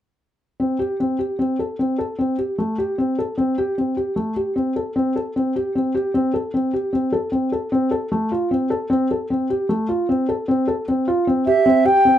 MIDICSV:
0, 0, Header, 1, 3, 480
1, 0, Start_track
1, 0, Key_signature, 0, "minor"
1, 0, Tempo, 395517
1, 727, Time_signature, 7, 2, 24, 8
1, 14788, End_track
2, 0, Start_track
2, 0, Title_t, "Flute"
2, 0, Program_c, 0, 73
2, 13913, Note_on_c, 0, 76, 61
2, 14393, Note_on_c, 0, 79, 73
2, 14411, Note_off_c, 0, 76, 0
2, 14788, Note_off_c, 0, 79, 0
2, 14788, End_track
3, 0, Start_track
3, 0, Title_t, "Felt piano"
3, 0, Program_c, 1, 0
3, 724, Note_on_c, 1, 60, 50
3, 926, Note_off_c, 1, 60, 0
3, 959, Note_on_c, 1, 67, 47
3, 1163, Note_off_c, 1, 67, 0
3, 1214, Note_on_c, 1, 60, 46
3, 1412, Note_off_c, 1, 60, 0
3, 1442, Note_on_c, 1, 67, 46
3, 1645, Note_off_c, 1, 67, 0
3, 1685, Note_on_c, 1, 60, 49
3, 1887, Note_off_c, 1, 60, 0
3, 1933, Note_on_c, 1, 69, 44
3, 2132, Note_off_c, 1, 69, 0
3, 2174, Note_on_c, 1, 60, 48
3, 2373, Note_off_c, 1, 60, 0
3, 2408, Note_on_c, 1, 69, 46
3, 2610, Note_off_c, 1, 69, 0
3, 2652, Note_on_c, 1, 60, 50
3, 2853, Note_off_c, 1, 60, 0
3, 2893, Note_on_c, 1, 67, 43
3, 3093, Note_off_c, 1, 67, 0
3, 3136, Note_on_c, 1, 57, 45
3, 3335, Note_off_c, 1, 57, 0
3, 3377, Note_on_c, 1, 67, 47
3, 3576, Note_off_c, 1, 67, 0
3, 3619, Note_on_c, 1, 60, 49
3, 3818, Note_off_c, 1, 60, 0
3, 3865, Note_on_c, 1, 69, 48
3, 4061, Note_off_c, 1, 69, 0
3, 4097, Note_on_c, 1, 60, 55
3, 4297, Note_off_c, 1, 60, 0
3, 4346, Note_on_c, 1, 67, 51
3, 4542, Note_off_c, 1, 67, 0
3, 4586, Note_on_c, 1, 60, 43
3, 4782, Note_off_c, 1, 60, 0
3, 4817, Note_on_c, 1, 67, 48
3, 5017, Note_off_c, 1, 67, 0
3, 5048, Note_on_c, 1, 57, 47
3, 5252, Note_off_c, 1, 57, 0
3, 5295, Note_on_c, 1, 67, 44
3, 5496, Note_off_c, 1, 67, 0
3, 5531, Note_on_c, 1, 60, 47
3, 5734, Note_off_c, 1, 60, 0
3, 5777, Note_on_c, 1, 69, 41
3, 5977, Note_off_c, 1, 69, 0
3, 6016, Note_on_c, 1, 60, 55
3, 6217, Note_off_c, 1, 60, 0
3, 6258, Note_on_c, 1, 69, 46
3, 6458, Note_off_c, 1, 69, 0
3, 6506, Note_on_c, 1, 60, 52
3, 6702, Note_off_c, 1, 60, 0
3, 6746, Note_on_c, 1, 67, 50
3, 6943, Note_off_c, 1, 67, 0
3, 6983, Note_on_c, 1, 60, 53
3, 7181, Note_off_c, 1, 60, 0
3, 7216, Note_on_c, 1, 67, 54
3, 7417, Note_off_c, 1, 67, 0
3, 7454, Note_on_c, 1, 60, 60
3, 7656, Note_off_c, 1, 60, 0
3, 7690, Note_on_c, 1, 69, 46
3, 7893, Note_off_c, 1, 69, 0
3, 7934, Note_on_c, 1, 60, 50
3, 8135, Note_off_c, 1, 60, 0
3, 8173, Note_on_c, 1, 67, 46
3, 8374, Note_off_c, 1, 67, 0
3, 8407, Note_on_c, 1, 60, 49
3, 8611, Note_off_c, 1, 60, 0
3, 8646, Note_on_c, 1, 69, 48
3, 8850, Note_off_c, 1, 69, 0
3, 8882, Note_on_c, 1, 60, 50
3, 9087, Note_off_c, 1, 60, 0
3, 9130, Note_on_c, 1, 69, 46
3, 9332, Note_off_c, 1, 69, 0
3, 9369, Note_on_c, 1, 60, 59
3, 9571, Note_off_c, 1, 60, 0
3, 9600, Note_on_c, 1, 69, 53
3, 9806, Note_off_c, 1, 69, 0
3, 9850, Note_on_c, 1, 57, 53
3, 10051, Note_off_c, 1, 57, 0
3, 10092, Note_on_c, 1, 65, 49
3, 10293, Note_off_c, 1, 65, 0
3, 10327, Note_on_c, 1, 60, 52
3, 10529, Note_off_c, 1, 60, 0
3, 10561, Note_on_c, 1, 69, 56
3, 10765, Note_off_c, 1, 69, 0
3, 10798, Note_on_c, 1, 60, 64
3, 11004, Note_off_c, 1, 60, 0
3, 11055, Note_on_c, 1, 69, 45
3, 11253, Note_off_c, 1, 69, 0
3, 11290, Note_on_c, 1, 60, 49
3, 11490, Note_off_c, 1, 60, 0
3, 11530, Note_on_c, 1, 67, 51
3, 11730, Note_off_c, 1, 67, 0
3, 11761, Note_on_c, 1, 57, 50
3, 11964, Note_off_c, 1, 57, 0
3, 11998, Note_on_c, 1, 65, 52
3, 12202, Note_off_c, 1, 65, 0
3, 12245, Note_on_c, 1, 60, 54
3, 12446, Note_off_c, 1, 60, 0
3, 12484, Note_on_c, 1, 69, 50
3, 12685, Note_off_c, 1, 69, 0
3, 12720, Note_on_c, 1, 60, 60
3, 12922, Note_off_c, 1, 60, 0
3, 12957, Note_on_c, 1, 69, 54
3, 13160, Note_off_c, 1, 69, 0
3, 13208, Note_on_c, 1, 60, 51
3, 13406, Note_off_c, 1, 60, 0
3, 13441, Note_on_c, 1, 65, 58
3, 13642, Note_off_c, 1, 65, 0
3, 13680, Note_on_c, 1, 60, 54
3, 13881, Note_off_c, 1, 60, 0
3, 13922, Note_on_c, 1, 67, 62
3, 14121, Note_off_c, 1, 67, 0
3, 14147, Note_on_c, 1, 60, 70
3, 14351, Note_off_c, 1, 60, 0
3, 14383, Note_on_c, 1, 67, 59
3, 14589, Note_off_c, 1, 67, 0
3, 14624, Note_on_c, 1, 60, 50
3, 14788, Note_off_c, 1, 60, 0
3, 14788, End_track
0, 0, End_of_file